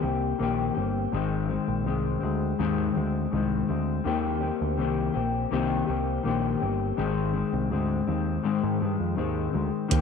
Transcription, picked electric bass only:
0.03 C2
0.40 A#1
0.76 G1
1.13 G#1
1.68 A#1
1.86 C2
2.23 D2
2.59 D#2
2.96 D2
3.33 C2
3.70 D2
4.06 D#2
4.61 D2
4.80 C2
5.16 A#1
5.52 C2
5.89 C2
6.25 A#1
6.62 G1
6.98 G#1
7.53 C2
7.71 D2
8.08 D#2
8.63 G#2
8.82 G2
9.00 F2
9.17 D#2
9.54 D2
9.91 D#2

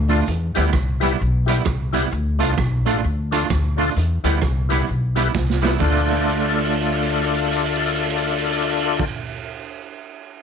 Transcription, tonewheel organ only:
0.08 D4 F4 A4
0.54 E4 G4 B4
1.00 E4 G4 B4
1.46 E4 G4 B4
1.93 E4 G4 B4
2.39 D4 F4 A4
2.85 D4 F4 A4
3.31 D4 F4 A4
3.77 D4 F4 A4
4.24 E4 G4 B4
4.69 E4 G4 B4
5.15 E4 G4 B4
5.62 E4 G4 B4
5.80 D4 F4 A4

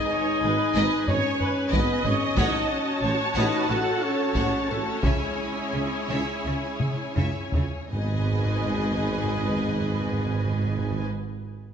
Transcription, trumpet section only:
Already playing: D#5
1.08 C#5
1.73 B4
2.05 C#5
2.36 D#5
2.69 C#5
3.36 D#5
3.69 F#5
4.02 C#5
4.70 A4
5.05 G#4
7.92 G#4

